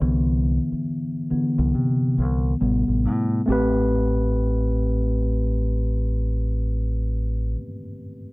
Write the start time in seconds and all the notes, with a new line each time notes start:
Already playing: E5
0.01 C2 D3 E3 B3
0.72 muted fingered electric bass stroke
1.31 D3 E3 B3, muted fingered electric bass stroke
1.59 C2
1.75 C3
2.18 C2
2.60 A1 C3 G3 B3
2.88 A1
3.05 A2
3.46 A1 A3 C4
3.50 G4 B4